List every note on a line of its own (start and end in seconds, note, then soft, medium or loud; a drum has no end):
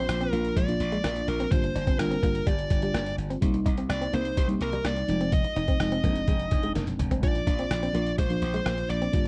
0.00 0.10 F3 medium
0.00 0.11 A#3 medium
0.00 0.11 D4 medium
0.00 0.11 F4 medium
0.00 0.32 C5 medium
0.09 0.26 A#1 medium
0.09 muted clean electric guitar stroke soft
0.09 cross-stick loud
0.09 closed hi-hat medium
0.21 0.29 C4 medium
0.21 closed hi-hat soft
0.32 0.50 A#1 medium
0.32 0.57 F3 medium
0.32 0.57 A#3 medium
0.32 0.41 A#3 medium
0.32 0.57 D4 medium
0.32 0.57 F4 medium
0.32 0.60 A#4 medium
0.32 closed hi-hat medium
0.45 closed hi-hat medium
0.56 0.74 A#1 medium
0.56 0.64 G#3 medium
0.56 1.30 D5 loud
0.56 kick medium
0.56 closed hi-hat medium
0.68 1.26 F3 medium
0.68 1.26 A#3 medium
0.68 1.26 D4 medium
0.68 1.26 F4 medium
0.68 closed hi-hat soft
0.80 0.97 A#1 medium
0.80 muted clean electric guitar stroke soft
0.80 closed hi-hat medium
0.92 1.00 G#3 medium
0.92 closed hi-hat soft
1.04 1.21 A#1 medium
1.04 1.12 A#3 medium
1.04 cross-stick loud
1.04 closed hi-hat medium
1.16 muted clean electric guitar stroke soft
1.16 closed hi-hat soft
1.28 1.45 A#1 medium
1.28 1.50 A#4 medium
1.28 closed hi-hat medium
1.40 1.48 C4 medium
1.40 closed hi-hat soft
1.51 1.69 G1 medium
1.51 1.84 G3 medium
1.51 1.84 A#3 medium
1.51 1.84 D4 medium
1.51 1.85 F4 medium
1.51 1.96 C5 medium
1.51 kick loud
1.51 closed hi-hat medium
1.64 muted clean electric guitar stroke soft
1.64 closed hi-hat soft
1.75 1.93 G1 medium
1.75 1.83 D4 medium
1.75 closed hi-hat medium
1.87 1.95 C4 medium
1.87 kick medium
1.87 closed hi-hat soft
1.99 2.16 G1 medium
1.99 2.15 G3 medium
1.99 2.16 A#3 medium
1.99 2.16 D4 medium
1.99 2.16 F4 medium
1.99 2.22 A#4 medium
1.99 muted clean electric guitar stroke soft
1.99 cross-stick loud
1.99 closed hi-hat medium
2.11 2.19 C4 medium
2.11 closed hi-hat medium
2.22 2.40 G1 medium
2.22 2.89 G3 medium
2.22 2.89 A#3 medium
2.22 2.31 A#3 medium
2.22 2.89 D4 medium
2.22 2.89 F4 medium
2.22 2.48 A#4 medium
2.22 kick medium
2.22 closed hi-hat medium
2.35 closed hi-hat soft
2.47 2.64 G1 medium
2.47 2.55 G3 medium
2.47 3.14 D5 medium
2.47 kick medium
2.47 closed hi-hat medium
2.59 closed hi-hat soft
2.70 2.88 G1 medium
2.70 muted clean electric guitar stroke soft
2.70 kick medium
2.70 closed hi-hat medium
2.82 2.91 G3 medium
2.82 closed hi-hat soft
2.94 3.11 G1 medium
2.94 3.02 A#3 medium
2.94 cross-stick loud
2.94 closed hi-hat medium
3.06 muted clean electric guitar stroke soft
3.06 closed hi-hat soft
3.18 3.35 G1 medium
3.18 closed hi-hat medium
3.30 3.38 C4 medium
3.30 closed hi-hat soft
3.41 3.59 C2 medium
3.41 3.91 G3 medium
3.41 3.91 A#3 medium
3.41 3.92 C4 medium
3.41 3.92 D#4 medium
3.41 kick loud
3.41 closed hi-hat medium
3.54 muted clean electric guitar stroke soft
3.54 closed hi-hat soft
3.66 3.83 C2 medium
3.66 3.74 D#4 medium
3.66 kick medium
3.66 closed hi-hat medium
3.77 3.86 C4 medium
3.77 closed hi-hat medium
3.89 4.06 C2 medium
3.89 4.14 D5 medium
3.89 muted clean electric guitar stroke soft
3.89 cross-stick loud
3.89 closed hi-hat medium
4.01 4.09 C4 medium
4.01 closed hi-hat medium
4.13 4.30 C2 medium
4.13 4.38 G3 medium
4.13 4.38 A#3 medium
4.13 4.21 A#3 medium
4.13 4.38 C4 medium
4.13 4.38 D#4 medium
4.13 4.37 C5 medium
4.13 closed hi-hat medium
4.25 closed hi-hat medium
4.37 4.54 C2 medium
4.37 4.45 G3 medium
4.37 4.44 C5 medium
4.37 kick medium
4.37 closed hi-hat medium
4.48 5.06 G3 medium
4.48 5.07 A#3 medium
4.48 5.07 C4 medium
4.48 5.07 D#4 medium
4.48 closed hi-hat soft
4.61 4.78 C2 medium
4.61 4.86 A#4 medium
4.61 muted clean electric guitar stroke soft
4.61 closed hi-hat medium
4.73 4.81 G3 medium
4.73 closed hi-hat soft
4.85 5.02 C2 medium
4.85 4.93 A#3 medium
4.85 5.33 D5 medium
4.85 cross-stick loud
4.85 closed hi-hat medium
4.96 muted clean electric guitar stroke soft
4.96 closed hi-hat soft
5.08 5.43 F1 medium
5.08 5.65 F3 medium
5.08 5.66 G#3 medium
5.08 5.66 C4 medium
5.08 5.66 D#4 medium
5.08 closed hi-hat medium
5.21 5.29 C4 medium
5.21 closed hi-hat soft
5.32 6.72 D#5 medium
5.32 kick loud
5.32 closed hi-hat medium
5.44 muted clean electric guitar stroke soft
5.44 closed hi-hat soft
5.56 5.73 F1 medium
5.56 5.64 D#4 medium
5.56 closed hi-hat medium
5.68 5.76 C4 medium
5.68 kick medium
5.68 closed hi-hat medium
5.79 5.97 F1 medium
5.79 5.96 F3 medium
5.79 5.96 G#3 medium
5.79 5.97 C4 medium
5.79 5.97 D#4 medium
5.79 muted clean electric guitar stroke soft
5.79 cross-stick loud
5.79 closed hi-hat medium
5.92 6.00 C4 medium
5.92 closed hi-hat soft
6.03 6.21 F1 medium
6.03 6.70 F3 medium
6.03 6.70 G#3 medium
6.03 6.12 A#3 medium
6.03 6.70 C4 medium
6.03 6.10 D4 medium
6.03 kick medium
6.03 closed hi-hat medium
6.10 6.73 D#4 medium
6.16 closed hi-hat soft
6.28 6.45 F1 medium
6.28 6.36 G#3 medium
6.28 kick medium
6.28 closed hi-hat medium
6.39 closed hi-hat soft
6.51 6.69 F1 medium
6.51 muted clean electric guitar stroke soft
6.51 kick medium
6.51 closed hi-hat medium
6.63 6.71 G#3 medium
6.63 closed hi-hat soft
6.75 6.92 F1 medium
6.75 6.83 A#3 medium
6.75 snare soft
6.75 closed hi-hat medium
6.87 muted clean electric guitar stroke soft
6.87 closed hi-hat soft
6.87 high tom soft
6.99 7.23 F1 medium
6.99 closed hi-hat medium
6.99 mid tom medium
7.11 7.19 C4 medium
7.11 closed hi-hat soft
7.11 floor tom medium
7.22 7.40 A#1 loud
7.22 7.72 F3 medium
7.22 7.72 A#3 medium
7.22 7.73 D4 medium
7.22 7.73 F4 medium
7.22 8.15 D5 loud
7.22 kick loud
7.22 closed hi-hat medium
7.35 muted clean electric guitar stroke soft
7.35 closed hi-hat soft
7.47 7.64 A#1 medium
7.47 7.55 D4 medium
7.47 kick medium
7.47 closed hi-hat medium
7.59 7.67 C4 medium
7.59 closed hi-hat medium
7.71 7.88 A#1 medium
7.71 muted clean electric guitar stroke soft
7.71 cross-stick loud
7.71 closed hi-hat medium
7.83 7.91 C4 medium
7.83 closed hi-hat soft
7.93 8.12 A#1 medium
7.93 8.19 F3 medium
7.93 8.19 A#3 medium
7.93 8.03 A#3 medium
7.93 8.19 D4 medium
7.93 8.19 F4 medium
7.93 closed hi-hat medium
8.06 closed hi-hat medium
8.18 8.35 A#1 loud
8.18 8.26 G#3 medium
8.18 8.90 C5 medium
8.18 kick medium
8.18 closed hi-hat medium
8.29 8.88 F3 medium
8.29 8.88 A#3 medium
8.29 8.88 D4 medium
8.29 8.88 F4 medium
8.29 closed hi-hat soft
8.42 8.59 A#1 loud
8.42 muted clean electric guitar stroke soft
8.42 closed hi-hat medium
8.54 8.62 G#3 medium
8.54 closed hi-hat soft
8.66 8.83 A#1 medium
8.66 8.74 A#3 medium
8.66 cross-stick loud
8.66 closed hi-hat medium
8.78 muted clean electric guitar stroke soft
8.78 closed hi-hat soft
8.90 9.07 A#1 medium
8.90 9.28 D5 medium
8.90 closed hi-hat medium
9.02 9.10 C4 medium
9.02 closed hi-hat medium
9.12 9.28 G1 medium
9.12 9.28 G3 medium
9.12 9.28 A#3 medium
9.12 9.28 D4 medium
9.12 9.28 F4 medium
9.12 kick loud
9.12 closed hi-hat medium